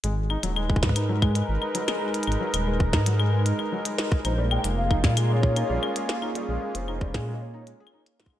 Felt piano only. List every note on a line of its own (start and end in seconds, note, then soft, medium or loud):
0.04 0.11 G#3 medium
0.30 0.37 D#4 medium
0.43 0.48 F#3 medium
0.56 0.64 G#3 medium
0.70 0.77 G#3 medium
0.96 1.03 D#4 medium
1.09 1.13 F#3 medium
1.22 1.30 G#3 medium
1.35 1.43 G#3 medium
1.62 1.69 D#4 medium
1.75 1.79 F#3 medium
1.88 1.95 G#3 medium
2.01 2.08 G#3 medium
2.27 2.35 D#4 medium
2.41 2.45 F#3 medium
2.54 2.61 G#3 medium
2.67 2.74 G#3 medium
2.93 3.01 D#4 medium
3.06 3.11 F#3 medium
3.20 3.27 G#3 medium
3.33 3.40 G#3 medium
3.59 3.66 D#4 medium
3.72 3.77 F#3 medium
3.85 3.93 G#3 medium
3.99 4.06 G#3 medium
4.25 4.32 D#4 medium
4.38 4.42 G3 medium
4.51 4.58 G#3 medium
4.64 4.72 G#3 medium
4.91 4.98 D#4 medium
5.04 5.08 G3 medium
5.17 5.24 G#3 medium
5.30 5.37 G#3 medium
5.57 5.64 D#4 medium
5.70 5.74 G3 medium
5.83 5.90 G#3 medium
5.96 6.03 G#3 medium
6.22 6.30 D#4 medium
6.35 6.40 G3 medium
6.49 6.56 G#3 medium
6.62 6.69 G#3 medium
6.88 6.95 D#4 medium
7.01 7.06 G3 medium
7.14 7.22 G#3 medium
7.28 7.35 G#3 medium
7.54 7.61 D#4 medium
7.67 7.78 G#3 medium
7.80 7.85 G#4 loud
7.93 8.01 D#4 medium
8.20 8.31 G#2 medium
8.33 8.40 G#3 medium